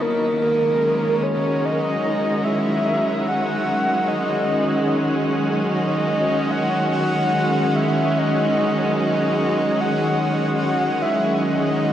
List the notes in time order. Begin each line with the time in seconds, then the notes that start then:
Already playing: F#3 F#4
0.01 D#3 A#4
0.42 A#4
0.46 G#3
0.72 C#4
1.23 F#4 C#5
1.65 D#5
2.44 E5
3.28 F#5
4.08 D#5
5.72 D#5
6.51 F#5
6.92 F#5
7.76 E5
8.18 D#5
8.97 D#5
9.81 F#5
10.21 F#5
11.02 E5
11.37 E5
11.43 D#5